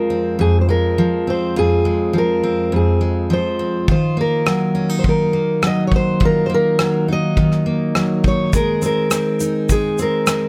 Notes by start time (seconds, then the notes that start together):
Already playing: F2 F3 G#3 F4 A#4
0.10 C4
0.39 F2 G#4
0.61 C5
0.69 G#3 A#4
0.98 F3
1.27 C4 C5
1.56 F2 F4 G#4
1.85 G#3
2.13 F3
2.18 A#4
2.43 C4
2.72 F2 G#4
3.01 G#3
3.30 F3 C5
3.59 C4
3.88 D#3 F4 C5, kick
4.17 A#3 A#4
4.46 F#3, cross-stick
4.75 C#4
4.89 D#4
4.99 C5
5.04 D#3, kick
5.09 A#4
5.33 A#3
5.62 F#3, cross-stick
5.67 D#5
5.87 C#5
5.91 D#4, kick
5.96 C5
6.20 D#3 F4, kick
6.25 A#4
6.46 A#3 C5
6.54 A#4
6.79 F#3, cross-stick
7.08 D#4
7.13 D#5
7.37 D#3, kick
7.52 cross-stick
7.66 A#3
7.95 F#3, cross-stick
8.24 D#4 C#5, kick
8.53 G#3 A#4, kick, shaker
8.82 C4 A#4, shaker
9.10 C4, cross-stick, shaker
9.40 D#4, shaker
9.69 G#3 G#4, kick, shaker
9.98 C4 A#4, shaker
10.27 C4, cross-stick, shaker